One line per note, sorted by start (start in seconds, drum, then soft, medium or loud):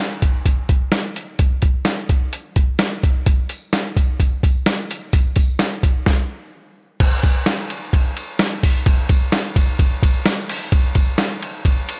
0.22 kick medium
0.22 closed hi-hat medium
0.46 kick medium
0.46 closed hi-hat medium
0.69 kick medium
0.69 closed hi-hat medium
0.92 snare loud
0.92 closed hi-hat medium
1.16 closed hi-hat medium
1.39 kick loud
1.39 closed hi-hat loud
1.62 kick medium
1.62 closed hi-hat medium
1.85 snare loud
1.85 closed hi-hat medium
2.09 kick medium
2.09 closed hi-hat medium
2.33 closed hi-hat medium
2.56 kick medium
2.56 closed hi-hat medium
2.79 snare loud
2.79 closed hi-hat medium
3.03 kick medium
3.03 closed hi-hat medium
3.26 kick loud
3.26 closed hi-hat loud
3.26 tambourine soft
3.49 closed hi-hat medium
3.49 tambourine medium
3.73 snare loud
3.73 closed hi-hat medium
3.73 tambourine medium
3.97 kick medium
3.97 closed hi-hat medium
3.97 tambourine soft
4.20 kick medium
4.20 closed hi-hat medium
4.20 tambourine soft
4.43 kick medium
4.43 closed hi-hat medium
4.43 tambourine soft
4.66 snare loud
4.66 closed hi-hat medium
4.66 tambourine medium
4.90 closed hi-hat medium
4.90 tambourine medium
5.12 kick loud
5.12 closed hi-hat loud
5.12 tambourine soft
5.36 kick medium
5.36 closed hi-hat medium
5.36 tambourine medium
5.59 snare loud
5.59 closed hi-hat loud
5.59 tambourine medium
5.83 kick medium
5.83 closed hi-hat medium
5.83 tambourine soft
6.06 kick medium
6.06 snare medium
7.00 kick loud
7.00 crash medium
7.00 ride medium
7.00 tambourine soft
7.23 kick medium
7.23 ride medium
7.23 tambourine medium
7.46 snare loud
7.46 ride medium
7.46 tambourine medium
7.70 ride medium
7.93 kick medium
7.93 ride medium
8.17 ride medium
8.17 tambourine medium
8.39 snare loud
8.39 ride medium
8.39 tambourine medium
8.63 kick loud
8.63 open hi-hat medium
8.63 ride medium
8.63 tambourine medium
8.86 kick loud
8.86 ride medium
8.86 tambourine soft
9.09 kick loud
9.09 ride medium
9.09 tambourine medium
9.32 snare loud
9.32 ride medium
9.32 tambourine medium
9.56 kick loud
9.56 ride medium
9.56 tambourine soft
9.79 kick medium
9.79 ride medium
9.79 tambourine soft
10.03 kick medium
10.03 ride medium
10.03 tambourine soft
10.26 snare loud
10.26 ride medium
10.26 tambourine medium
10.49 open hi-hat medium
10.49 ride medium
10.49 tambourine medium
10.72 kick loud
10.72 ride medium
10.72 tambourine soft
10.95 kick medium
10.95 ride soft
10.95 tambourine medium
11.18 snare loud
11.18 ride medium
11.18 tambourine medium
11.43 ride medium
11.43 tambourine soft
11.65 kick medium
11.65 ride medium
11.89 ride medium
11.89 tambourine soft